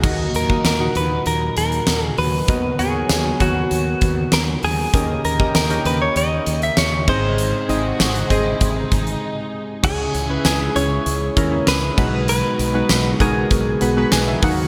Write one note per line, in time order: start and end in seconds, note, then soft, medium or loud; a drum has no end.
0.00 0.26 D#2 loud
0.00 2.46 A#2 medium
0.00 4.89 D#3 medium
0.00 0.92 D#3 medium
0.00 4.89 F#3 medium
0.00 0.33 A#3 medium
0.00 2.46 D#4 medium
0.00 0.33 D#4 medium
0.00 0.31 F#4 medium
0.00 4.89 F#4 medium
0.00 0.33 F#4 medium
0.00 kick loud
0.00 crash medium
0.04 0.34 D#5 medium
0.34 0.56 D#2 medium
0.34 0.65 A#4 medium
0.34 closed hi-hat medium
0.49 0.69 A#3 medium
0.49 0.69 D#4 medium
0.49 0.70 F#4 medium
0.49 0.70 D#5 medium
0.49 kick medium
0.65 0.87 D#2 loud
0.65 0.96 A#4 medium
0.65 snare loud
0.65 closed hi-hat medium
0.80 1.59 A#2 medium
0.80 1.59 D#4 medium
0.80 1.59 F#4 medium
0.80 1.59 F#5 medium
0.95 1.18 D#2 loud
0.95 1.27 B4 medium
0.95 closed hi-hat medium
1.26 1.48 D#2 loud
1.26 1.55 A#4 medium
1.26 closed hi-hat medium
1.57 1.79 D#2 loud
1.57 2.06 A#4 medium
1.57 closed hi-hat medium
1.72 closed hi-hat soft
1.87 2.10 D#2 medium
1.87 snare loud
1.87 closed hi-hat medium
2.06 2.18 G#4 medium
2.18 2.40 D#2 medium
2.18 2.76 B4 medium
2.18 open hi-hat medium
2.48 2.71 D#2 loud
2.48 3.37 D#3 medium
2.48 2.68 B3 medium
2.48 4.91 B3 medium
2.48 2.68 F#4 medium
2.48 2.69 A#4 medium
2.48 2.69 D#5 medium
2.48 kick loud
2.48 closed hi-hat medium
2.79 3.01 D#2 loud
2.79 3.19 B3 medium
2.79 3.19 F#4 medium
2.79 3.42 G#4 medium
2.79 3.19 A#4 medium
2.79 3.19 C#5 medium
2.79 closed hi-hat medium
3.09 3.32 D#2 medium
3.09 snare loud
3.09 closed hi-hat medium
3.09 tambourine medium
3.40 3.63 D#2 medium
3.40 4.19 B3 medium
3.40 4.19 F#4 medium
3.40 4.36 F#4 medium
3.40 4.19 A#4 medium
3.40 4.20 C#5 medium
3.40 kick medium
3.40 closed hi-hat medium
3.71 3.93 D#2 loud
3.71 closed hi-hat medium
4.01 4.24 D#2 medium
4.01 kick medium
4.01 closed hi-hat medium
4.32 4.55 D#2 loud
4.32 4.42 A#4 loud
4.32 snare loud
4.32 closed hi-hat medium
4.32 tambourine medium
4.63 4.85 D#2 medium
4.63 5.21 G#4 medium
4.63 open hi-hat medium
4.93 5.16 D#2 loud
4.93 7.05 C#3 medium
4.93 5.82 D#3 medium
4.93 7.05 A#3 medium
4.93 5.23 C#4 medium
4.93 7.05 D#4 medium
4.93 5.23 G4 medium
4.93 5.24 A#4 medium
4.93 5.24 D#5 medium
4.93 7.05 G5 medium
4.93 kick loud
4.93 closed hi-hat medium
5.25 5.47 D#2 loud
5.25 5.54 A#4 medium
5.25 closed hi-hat medium
5.39 5.59 C#4 medium
5.39 5.59 G4 medium
5.39 5.59 A#4 medium
5.39 5.60 D#5 medium
5.39 kick medium
5.55 5.77 D#2 loud
5.55 5.84 A#4 loud
5.55 snare loud
5.55 closed hi-hat medium
5.55 tambourine medium
5.70 6.49 C#4 medium
5.70 6.49 G4 medium
5.70 6.49 A#4 medium
5.70 6.49 D#5 medium
5.70 closed hi-hat medium
5.85 6.07 D#2 loud
5.85 6.01 B4 loud
5.85 closed hi-hat medium
6.02 6.17 C#5 loud
6.16 6.38 D#2 loud
6.16 6.63 D#5 loud
6.16 closed hi-hat medium
6.46 6.69 D#2 loud
6.46 closed hi-hat medium
6.62 6.77 E5 loud
6.62 closed hi-hat soft
6.77 7.09 D#2 loud
6.77 7.09 C#5 loud
6.77 snare loud
6.77 closed hi-hat medium
6.77 tambourine medium
7.07 7.52 G#1 medium
7.07 7.96 G#2 medium
7.07 9.81 C3 medium
7.07 9.80 G#3 medium
7.07 7.57 C4 medium
7.07 7.57 D#4 medium
7.07 9.81 G#4 medium
7.07 7.57 G#4 medium
7.07 9.49 C5 loud
7.07 9.81 D#5 medium
7.07 7.57 D#5 medium
7.07 kick loud
7.07 crash medium
7.38 closed hi-hat medium
7.69 7.91 G#1 loud
7.69 8.08 C4 medium
7.69 8.08 D#4 medium
7.69 7.83 E4 medium
7.69 8.09 G#4 medium
7.69 8.09 D#5 medium
7.69 closed hi-hat medium
7.85 8.30 F#4 loud
8.00 8.22 G#1 loud
8.00 snare loud
8.00 closed hi-hat medium
8.00 tambourine medium
8.15 closed hi-hat medium
8.30 8.53 G#1 medium
8.30 9.09 C4 medium
8.30 8.46 G#4 loud
8.30 9.09 G#4 medium
8.30 9.10 D#5 loud
8.30 kick medium
8.30 closed hi-hat medium
8.45 8.76 E4 loud
8.61 8.83 G#1 loud
8.61 kick loud
8.61 closed hi-hat medium
8.76 9.83 D#4 loud
8.92 9.14 G#1 loud
8.92 kick medium
8.92 closed hi-hat medium
9.07 closed hi-hat soft
9.83 10.06 C#2 loud
9.83 11.96 C#3 medium
9.83 10.71 C#3 medium
9.83 14.39 G#3 medium
9.83 10.13 C#4 medium
9.83 11.96 E4 medium
9.83 10.13 E4 medium
9.83 11.95 G#4 medium
9.83 10.13 G#4 medium
9.83 10.41 G#4 medium
9.83 kick loud
9.83 crash loud
10.15 10.36 C#2 medium
10.15 closed hi-hat medium
10.29 10.59 C#4 medium
10.29 10.59 E4 medium
10.29 10.59 B4 medium
10.45 10.67 C#2 loud
10.45 10.76 G#4 medium
10.45 snare loud
10.45 closed hi-hat loud
10.45 tambourine medium
10.75 10.98 C#2 loud
10.75 11.15 C#4 medium
10.75 11.15 E4 medium
10.75 11.15 G#4 medium
10.75 11.68 C#5 loud
10.75 closed hi-hat medium
11.06 11.28 C#2 loud
11.06 closed hi-hat medium
11.36 11.59 D#2 medium
11.36 11.46 C#4 medium
11.36 11.47 E4 medium
11.36 11.47 A#4 medium
11.36 kick medium
11.36 closed hi-hat medium
11.51 11.98 C#4 medium
11.51 11.98 E4 medium
11.51 11.98 G#4 medium
11.67 11.89 C#2 loud
11.67 12.28 B4 loud
11.67 snare loud
11.67 closed hi-hat medium
11.67 tambourine medium
11.97 12.42 B1 loud
11.97 12.86 B2 medium
11.97 14.68 D#3 medium
11.97 14.68 F#3 medium
11.97 12.59 G#3 medium
11.97 12.59 B3 medium
11.97 14.40 B3 medium
11.97 12.59 D#4 medium
11.97 14.40 F#4 medium
11.97 12.59 F#4 medium
11.97 12.59 B4 medium
11.97 kick loud
11.97 crash medium
12.28 13.17 B4 loud
12.28 closed hi-hat medium
12.59 12.81 B1 loud
12.59 closed hi-hat medium
12.74 13.04 G#3 medium
12.74 13.04 B3 medium
12.74 13.04 D#4 medium
12.74 13.04 F#4 medium
12.74 13.04 B4 medium
12.89 13.12 B1 medium
12.89 snare loud
12.89 closed hi-hat medium
12.89 tambourine medium
13.20 13.42 B1 loud
13.20 13.59 G#3 medium
13.20 13.59 B3 medium
13.20 13.60 D#4 medium
13.20 13.60 F#4 medium
13.20 14.39 G#4 medium
13.20 13.60 A#4 medium
13.20 kick medium
13.20 closed hi-hat medium
13.51 13.73 B1 loud
13.51 kick medium
13.51 closed hi-hat medium
13.81 14.04 B1 medium
13.81 13.91 G#3 medium
13.81 13.91 B3 medium
13.81 13.91 D#4 medium
13.81 13.91 F#4 medium
13.81 13.92 B4 medium
13.81 closed hi-hat medium
13.96 14.43 G#3 medium
13.96 14.43 B3 medium
13.96 14.42 D#4 medium
13.96 14.43 F#4 medium
13.96 14.43 B4 loud
14.12 14.34 B1 loud
14.12 14.26 G#5 medium
14.12 snare loud
14.12 closed hi-hat medium
14.12 tambourine medium
14.28 14.42 E5 medium
14.42 14.68 D#2 loud
14.42 14.68 A#2 medium
14.42 14.68 D#3 medium
14.42 14.68 A#3 medium
14.42 14.68 D#4 medium
14.42 14.68 F#4 medium
14.42 14.68 F#4 loud
14.42 14.68 F#5 medium
14.42 kick loud
14.42 open hi-hat medium